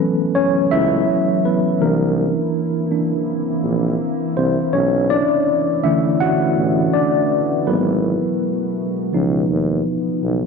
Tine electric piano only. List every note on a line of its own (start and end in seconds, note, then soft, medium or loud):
0.00 1.04 E3 medium
0.00 1.04 F#3 medium
0.00 1.83 A3 medium
0.00 0.31 B3 medium
0.00 0.35 C#4 medium
0.00 1.83 A4 medium
0.00 0.37 B4 medium
0.35 0.52 C#4 medium
0.35 0.51 C#5 loud
0.71 1.41 E4 medium
0.71 1.47 E5 loud
1.45 1.79 B3 medium
1.45 1.83 B4 medium
1.81 2.87 E3 medium
1.81 2.90 A#3 medium
1.81 2.87 D4 medium
1.81 3.97 A#4 medium
2.91 3.24 E3 soft
2.91 3.24 A#3 soft
2.91 3.24 D4 medium
4.37 4.72 C4 medium
4.37 4.75 C5 medium
4.73 5.08 C#4 medium
4.73 5.11 C#5 medium
5.10 5.80 D4 medium
5.10 5.79 D5 loud
5.83 6.35 D3 medium
5.83 6.36 E3 soft
5.83 6.36 A3 medium
5.83 6.36 C#4 medium
5.83 6.18 E4 medium
5.83 6.18 E5 medium
6.21 6.90 F#4 medium
6.21 6.89 F#5 loud
6.94 7.63 D4 medium
6.94 7.69 D5 medium
7.67 8.72 F#3 medium
7.67 9.12 B3 medium
7.67 8.73 A#4 soft
7.67 9.82 B4 medium
9.13 10.46 F3 medium
9.13 10.46 B3 soft
9.13 10.46 D#4 medium